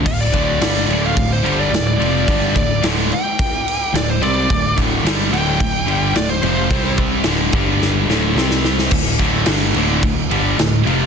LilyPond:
<<
  \new Staff \with { instrumentName = "Lead electric guitar" } { \time 4/4 \key d \minor \tempo 4 = 108 f''16 d''4. f''8 c''8 d''8 d''8.~ | d''8 d''8 r8 g''4. d''16 c''16 d''8~ | d''8 r4 g''4. d''16 c''16 c''8~ | c''8 r2. r8 |
r1 | }
  \new Staff \with { instrumentName = "Distorted electric guitar" } { \clef bass \time 4/4 \key d \minor <d, a,>8 <d, a, d>8 <g, d g>8 <d, a, d>8 <d, a,>8 <g, d g>8 <d, a,>8 <f, c f>8 | <g, d g>8 <d, a,>8 <d, a, d>8 r4. <d, a,>8 <c g c'>8 | <d, a,>8 <d, a, d>8 <g, d g>8 <d, a, d>8 <d, a,>8 <g, d g>8 <d, a,>8 <f, c f>8 | <c g c'>4 <d, a, d>8 <g, d g>4 <d, a, d>8 <c g c'>4 |
<d, a,>8 <d, a, d>8 <g, d g>8 <d, a, d>8 <d, a,>8 <g, d g>8 <d, a,>8 <f, c f>8 | }
  \new Staff \with { instrumentName = "Distorted electric guitar" } { \clef bass \time 4/4 \key d \minor <d, a,>8 <d, a, d>8 <g, d g>8 <d, a, d>8 <d, a,>8 <g, d g>8 <d, a,>8 <f, c f>8 | <g, d g>8 <d, a,>8 <d, a, d>8 r4. <d, a,>8 <c g c'>8 | <d, a,>8 <d, a, d>8 <g, d g>8 <d, a, d>8 <d, a,>8 <g, d g>8 <d, a,>8 <f, c f>8 | <c g c'>4 <d, a, d>8 <g, d g>4 <d, a, d>8 <c g c'>4 |
<d, a,>8 <d, a, d>8 <g, d g>8 <d, a, d>8 <d, a,>8 <g, d g>8 <d, a,>8 <f, c f>8 | }
  \new Staff \with { instrumentName = "Overdriven electric guitar" } { \clef bass \time 4/4 \key d \minor <d, a,>8 <d, a, d>8 <g, d g>8 <d, a, d>8 <d, a,>8 <g, d g>8 <d, a,>8 <f, c f>8 | <g, d g>8 <d, a,>8 <d, a, d>8 r4. <d, a,>8 <c g c'>8 | <d, a,>8 <d, a, d>8 <g, d g>8 <d, a, d>8 <d, a,>8 <g, d g>8 <d, a,>8 <f, c f>8 | <c g c'>4 <d, a, d>8 <g, d g>4 <d, a, d>8 <c g c'>4 |
<d, a,>8 <d, a, d>8 <g, d g>8 <d, a, d>8 <d, a,>8 <g, d g>8 <d, a,>8 <f, c f>8 | }
  \new Staff \with { instrumentName = "Picked electric bass" } { \clef bass \time 4/4 \key d \minor d,,8 d,,8 g,,8 d,,8 d,,8 g,,8 d,,8 f,,8 | g,,8 d,,8 d,,8 r4. d,,8 c,8 | d,,8 d,,8 g,,8 d,,8 d,,8 g,,8 d,,8 f,,8 | c,4 d,,8 g,,4 d,,8 c,4 |
d,,8 d,,8 g,,8 d,,8 d,,8 g,,8 d,,8 f,,8 | }
  \new DrumStaff \with { instrumentName = "Drums" } \drummode { \time 4/4 <cymc bd>8 <cymc bd>8 <cymc sn>8 cymc8 <cymc bd>8 cymc8 <cymc sn>8 cymc8 | <cymc bd>8 <cymc bd>8 <cymc sn>8 cymc8 <cymc bd>8 cymc8 <cymc sn>8 cymc8 | <cymc bd>8 <cymc bd>8 <cymc sn>8 cymc8 <cymc bd>8 cymc8 <cymc sn>8 cymc8 | <cymc bd>8 <cymc bd>8 <cymc sn>8 <cymc bd>8 sn8 sn8 sn16 sn16 sn16 sn16 |
<cymc bd>8 <cymc bd>8 <cymc sn>8 cymc8 <cymc bd>8 cymc8 <cymc sn>8 cymc8 | }
>>